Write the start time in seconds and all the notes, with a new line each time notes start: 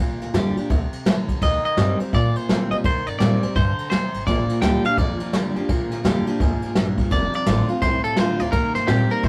0.00 A#1 A#2
0.20 D2, snare, ride
0.34 F2 D3 G3 D4 G4, snare, ride
0.56 D4 G4, muted upright bass stroke, ride
0.70 D2 C3, kick, ride
0.93 ride
1.06 A#1 D3, snare, ride
1.28 D2, kick, ride
1.42 D#2 D#3 D#5, kick, ride
1.64 D#5, muted upright bass stroke, ride
1.77 G2 D#3 G3 C4, snare, ride
1.99 G3 C4, muted upright bass stroke, ride
2.13 A#2 D5, kick, ride
2.35 C5, muted upright bass stroke, ride
2.49 C3 D#3 G3 C4, snare, ride
2.71 C3 G3 C4 D#5, ride
2.84 D#2 D#3 C5, kick, ride
3.07 G2 D5, ride
3.19 A#2 D#3 G3 D5, snare, ride
3.23 C4
3.43 G3 C4, muted upright bass stroke, ride
3.55 G2 D3 C5, kick, ride
3.79 muted upright bass stroke, ride
3.90 D#2 C3 C5, snare, ride
4.13 G#1, ride
4.26 A#1 A#2 F3 D5, kick, ride
4.48 A#2 F3, muted upright bass stroke, ride
4.62 D2 D3 G3 D4 G4 G5, snare, ride
4.84 A#2 F3 D4 G4 F5, muted upright bass stroke, ride
4.97 F2 A#2 F3 D5, kick, ride
5.20 A#2 F3, muted upright bass stroke, ride
5.33 G#2 A#2 D3 G3 D4 G4, snare, ride
5.55 G2 A#2 F3 D4 G4, ride
5.69 A#2 F3, kick, ride
5.91 D2 A#2 F3, snare, ride
6.04 F2 A#2 D3 G3 D4 G4, snare, ride
6.26 A#2 F3 D4 G4, muted upright bass stroke, ride
6.40 D2 G#2 A#2 F3, kick, ride
6.62 A#2 F3, muted upright bass stroke, ride
6.75 A#1 G2 A#2 G3, snare, ride
6.98 D#2 A#2 F3, kick, ride
7.11 F1 F2 C3 D5, kick, ride
7.33 F2 C3 D5, ride
7.46 A1 F2 D3 A3 C4 F4, snare, ride
7.68 F2 C3 C4 F4, ride
7.82 C2 F2 A2 C3 C5, kick, ride
8.03 F2 C3 A4, muted upright bass stroke, ride
8.16 D#2 F2 D3 A3 C4 F4 C5, snare, ride
8.39 D2 F2 C3 C4 F4 D5, ride
8.52 D#2 D#3 A#3 A#4, kick, ride
8.75 G2 D#3 A#3 C5, snare, ride
8.87 A#2 D#3 G3 C4 G4, snare, ride
9.09 D#3 G3 A#3 C4 A#4, ride
9.23 G2 D3 D#3 A#3 C5, kick, ride